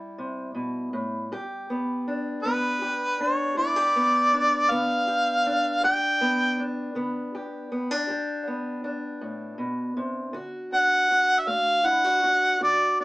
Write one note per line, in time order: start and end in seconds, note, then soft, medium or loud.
0.00 1.70 G3 medium
0.00 1.32 E4 medium
0.18 0.54 C3 medium
0.55 0.93 B2 medium
0.93 1.31 A2 medium
1.32 2.00 G2 medium
1.32 2.81 G4 medium
1.70 2.45 B3 medium
2.08 3.20 D4 medium
2.43 3.12 D3 medium
2.43 3.95 B3 medium
2.43 3.22 B4 medium
2.82 3.57 G4 medium
3.20 4.33 D4 medium
3.20 3.57 C#5 medium
3.57 4.25 G2 medium
3.57 3.76 E4 medium
3.57 4.72 D5 medium
3.76 5.06 G4 medium
3.96 4.69 B3 medium
4.34 5.46 D4 medium
4.70 5.38 D3 medium
4.70 5.79 B3 medium
4.70 5.83 F5 medium
5.07 5.78 G4 medium
5.46 6.59 D4 medium
5.83 6.51 G2 medium
5.83 7.33 G4 medium
5.83 6.64 G5 loud
6.21 6.95 B3 medium
6.59 7.71 D4 medium
6.95 7.63 D3 medium
6.95 7.70 B3 medium
7.35 8.09 G4 medium
7.72 7.91 B3 medium
7.91 8.83 D4 soft
8.08 8.76 G2 medium
8.08 10.31 G4 medium
8.47 10.31 B3 medium
8.84 10.72 D4 medium
9.21 9.58 A2 medium
9.58 9.96 B2 medium
9.97 10.35 C3 medium
10.33 11.02 D3 medium
10.33 11.10 F#4 medium
10.72 11.48 D4 medium
10.72 11.41 F#5 loud
11.11 11.83 F#4 medium
11.39 11.50 E5 medium
11.47 12.15 A3 medium
11.47 13.00 D4 medium
11.47 11.87 F5 loud
11.84 12.04 E4 medium
11.84 12.61 F#5 loud
12.04 12.23 F#4 medium
12.24 12.61 F#4 medium
12.61 13.04 D3 medium
12.61 13.04 F#4 medium
12.61 12.97 D5 medium
13.00 13.04 D4 medium
13.00 13.04 D5 medium